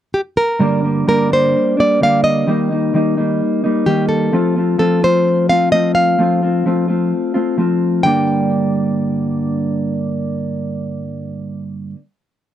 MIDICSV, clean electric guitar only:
0, 0, Header, 1, 2, 480
1, 0, Start_track
1, 0, Key_signature, -2, "minor"
1, 0, Tempo, 465116
1, 625, Time_signature, 4, 2, 24, 8
1, 12946, End_track
2, 0, Start_track
2, 0, Title_t, "Clean electric guitar"
2, 0, Program_c, 0, 27
2, 614, Note_on_c, 0, 43, 81
2, 623, Note_on_c, 0, 50, 90
2, 624, Note_on_c, 0, 55, 89
2, 635, Note_on_c, 0, 58, 94
2, 635, Note_on_c, 0, 62, 89
2, 843, Note_off_c, 0, 62, 0
2, 856, Note_on_c, 0, 62, 65
2, 868, Note_off_c, 0, 58, 0
2, 873, Note_on_c, 0, 58, 59
2, 874, Note_off_c, 0, 55, 0
2, 878, Note_on_c, 0, 55, 60
2, 1093, Note_off_c, 0, 43, 0
2, 1097, Note_off_c, 0, 50, 0
2, 1105, Note_off_c, 0, 55, 0
2, 1105, Note_on_c, 0, 43, 72
2, 1109, Note_on_c, 0, 50, 80
2, 1109, Note_on_c, 0, 55, 82
2, 1110, Note_off_c, 0, 62, 0
2, 1117, Note_off_c, 0, 58, 0
2, 1121, Note_on_c, 0, 58, 93
2, 1122, Note_on_c, 0, 62, 89
2, 1331, Note_off_c, 0, 62, 0
2, 1343, Note_on_c, 0, 62, 71
2, 1356, Note_off_c, 0, 58, 0
2, 1360, Note_on_c, 0, 58, 67
2, 1361, Note_off_c, 0, 55, 0
2, 1365, Note_on_c, 0, 55, 53
2, 1589, Note_off_c, 0, 43, 0
2, 1591, Note_off_c, 0, 50, 0
2, 1815, Note_off_c, 0, 62, 0
2, 1827, Note_on_c, 0, 62, 71
2, 1828, Note_off_c, 0, 58, 0
2, 1839, Note_off_c, 0, 55, 0
2, 1840, Note_on_c, 0, 58, 63
2, 1851, Note_on_c, 0, 55, 56
2, 2067, Note_off_c, 0, 55, 0
2, 2069, Note_on_c, 0, 50, 65
2, 2071, Note_off_c, 0, 58, 0
2, 2079, Note_off_c, 0, 62, 0
2, 2079, Note_on_c, 0, 55, 66
2, 2083, Note_on_c, 0, 58, 80
2, 2091, Note_on_c, 0, 62, 73
2, 2538, Note_off_c, 0, 50, 0
2, 2543, Note_off_c, 0, 55, 0
2, 2545, Note_off_c, 0, 58, 0
2, 2547, Note_on_c, 0, 51, 82
2, 2549, Note_off_c, 0, 62, 0
2, 2557, Note_on_c, 0, 55, 87
2, 2566, Note_on_c, 0, 58, 93
2, 2569, Note_on_c, 0, 63, 88
2, 2782, Note_off_c, 0, 63, 0
2, 2794, Note_off_c, 0, 58, 0
2, 2794, Note_on_c, 0, 63, 63
2, 2801, Note_off_c, 0, 55, 0
2, 2806, Note_on_c, 0, 58, 57
2, 2814, Note_on_c, 0, 55, 53
2, 3021, Note_off_c, 0, 51, 0
2, 3030, Note_off_c, 0, 55, 0
2, 3034, Note_on_c, 0, 51, 85
2, 3037, Note_off_c, 0, 58, 0
2, 3043, Note_on_c, 0, 55, 80
2, 3044, Note_off_c, 0, 63, 0
2, 3050, Note_on_c, 0, 58, 91
2, 3057, Note_on_c, 0, 63, 93
2, 3261, Note_off_c, 0, 63, 0
2, 3271, Note_off_c, 0, 58, 0
2, 3273, Note_on_c, 0, 63, 73
2, 3283, Note_on_c, 0, 58, 66
2, 3287, Note_off_c, 0, 55, 0
2, 3299, Note_on_c, 0, 55, 62
2, 3516, Note_off_c, 0, 51, 0
2, 3742, Note_off_c, 0, 63, 0
2, 3754, Note_on_c, 0, 63, 68
2, 3756, Note_off_c, 0, 58, 0
2, 3762, Note_off_c, 0, 55, 0
2, 3768, Note_on_c, 0, 58, 62
2, 3775, Note_on_c, 0, 55, 62
2, 3984, Note_off_c, 0, 55, 0
2, 3987, Note_on_c, 0, 51, 72
2, 3990, Note_off_c, 0, 58, 0
2, 3996, Note_on_c, 0, 55, 75
2, 3997, Note_off_c, 0, 63, 0
2, 4003, Note_on_c, 0, 58, 82
2, 4009, Note_on_c, 0, 63, 70
2, 4458, Note_off_c, 0, 51, 0
2, 4462, Note_off_c, 0, 55, 0
2, 4465, Note_off_c, 0, 58, 0
2, 4466, Note_on_c, 0, 53, 83
2, 4469, Note_off_c, 0, 63, 0
2, 4471, Note_on_c, 0, 57, 85
2, 4480, Note_on_c, 0, 60, 92
2, 4484, Note_on_c, 0, 65, 99
2, 4706, Note_off_c, 0, 65, 0
2, 4710, Note_on_c, 0, 65, 74
2, 4718, Note_off_c, 0, 60, 0
2, 4723, Note_on_c, 0, 60, 57
2, 4727, Note_off_c, 0, 57, 0
2, 4731, Note_on_c, 0, 57, 59
2, 4933, Note_off_c, 0, 53, 0
2, 4937, Note_on_c, 0, 53, 86
2, 4938, Note_off_c, 0, 57, 0
2, 4942, Note_on_c, 0, 57, 83
2, 4948, Note_off_c, 0, 60, 0
2, 4952, Note_on_c, 0, 60, 83
2, 4955, Note_off_c, 0, 65, 0
2, 4959, Note_on_c, 0, 65, 87
2, 5178, Note_off_c, 0, 65, 0
2, 5183, Note_on_c, 0, 65, 77
2, 5187, Note_off_c, 0, 60, 0
2, 5191, Note_on_c, 0, 60, 55
2, 5200, Note_off_c, 0, 57, 0
2, 5205, Note_on_c, 0, 57, 58
2, 5652, Note_off_c, 0, 65, 0
2, 5662, Note_off_c, 0, 60, 0
2, 5665, Note_on_c, 0, 65, 67
2, 5674, Note_on_c, 0, 60, 60
2, 5676, Note_off_c, 0, 57, 0
2, 5688, Note_on_c, 0, 57, 55
2, 5902, Note_off_c, 0, 53, 0
2, 5905, Note_off_c, 0, 57, 0
2, 5906, Note_on_c, 0, 53, 71
2, 5907, Note_off_c, 0, 60, 0
2, 5918, Note_off_c, 0, 65, 0
2, 5918, Note_on_c, 0, 57, 73
2, 5919, Note_on_c, 0, 60, 75
2, 5930, Note_on_c, 0, 65, 80
2, 6371, Note_off_c, 0, 53, 0
2, 6381, Note_off_c, 0, 57, 0
2, 6384, Note_on_c, 0, 53, 89
2, 6392, Note_off_c, 0, 60, 0
2, 6394, Note_on_c, 0, 57, 88
2, 6399, Note_off_c, 0, 65, 0
2, 6404, Note_on_c, 0, 60, 93
2, 6412, Note_on_c, 0, 65, 97
2, 6620, Note_off_c, 0, 65, 0
2, 6632, Note_off_c, 0, 60, 0
2, 6632, Note_on_c, 0, 65, 67
2, 6644, Note_off_c, 0, 57, 0
2, 6644, Note_on_c, 0, 60, 63
2, 6657, Note_on_c, 0, 57, 52
2, 6858, Note_off_c, 0, 53, 0
2, 6866, Note_off_c, 0, 57, 0
2, 6869, Note_off_c, 0, 60, 0
2, 6870, Note_on_c, 0, 53, 80
2, 6876, Note_off_c, 0, 65, 0
2, 6878, Note_on_c, 0, 57, 86
2, 6882, Note_on_c, 0, 60, 83
2, 6888, Note_on_c, 0, 65, 77
2, 7086, Note_off_c, 0, 65, 0
2, 7098, Note_off_c, 0, 60, 0
2, 7099, Note_on_c, 0, 65, 64
2, 7109, Note_off_c, 0, 57, 0
2, 7111, Note_on_c, 0, 60, 60
2, 7121, Note_on_c, 0, 57, 55
2, 7349, Note_off_c, 0, 53, 0
2, 7564, Note_off_c, 0, 65, 0
2, 7575, Note_off_c, 0, 60, 0
2, 7577, Note_on_c, 0, 65, 70
2, 7586, Note_off_c, 0, 57, 0
2, 7587, Note_on_c, 0, 60, 66
2, 7598, Note_on_c, 0, 57, 62
2, 7813, Note_off_c, 0, 57, 0
2, 7818, Note_on_c, 0, 53, 64
2, 7820, Note_off_c, 0, 60, 0
2, 7825, Note_on_c, 0, 57, 66
2, 7828, Note_off_c, 0, 65, 0
2, 7832, Note_on_c, 0, 60, 72
2, 7840, Note_on_c, 0, 65, 78
2, 8286, Note_off_c, 0, 53, 0
2, 8286, Note_on_c, 0, 43, 83
2, 8290, Note_off_c, 0, 57, 0
2, 8293, Note_off_c, 0, 60, 0
2, 8297, Note_off_c, 0, 65, 0
2, 8298, Note_on_c, 0, 50, 83
2, 8309, Note_on_c, 0, 55, 92
2, 8314, Note_on_c, 0, 58, 92
2, 8323, Note_on_c, 0, 62, 91
2, 12318, Note_off_c, 0, 43, 0
2, 12330, Note_off_c, 0, 50, 0
2, 12341, Note_off_c, 0, 55, 0
2, 12346, Note_off_c, 0, 58, 0
2, 12355, Note_off_c, 0, 62, 0
2, 12946, End_track
0, 0, End_of_file